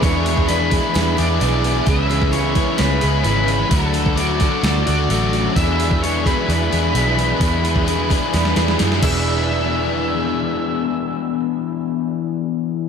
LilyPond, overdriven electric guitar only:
\new Staff \with { instrumentName = "Overdriven electric guitar" } { \time 4/4 \key e \mixolydian \tempo 4 = 130 <e b d' gis'>4 <e b d' gis'>8 <b d' gis'>4 <b d' gis'>8 <e b d' gis'>4 | <cis e gis cis' gis'>4 <e gis cis' gis'>8 <gis cis' gis'>4 <gis cis' gis'>8 <cis e gis cis' gis'>4 | <d fis a d' fis'>4 <fis a d' fis'>8 <a d' fis'>4 <a d' fis'>8 <d fis a d' fis'>4 | <e b d' gis'>4 <e b d' gis'>8 <b d' gis'>4 <b d' gis'>8 <e b d' gis'>4 |
<e b d' gis'>4 <e b d' gis'>8 <b d' gis'>4 <b d' gis'>8 <e b d' gis'>8 <e b d' gis' d''>8~ | <e b d' gis' d''>1~ | <e b d' gis' d''>1 | }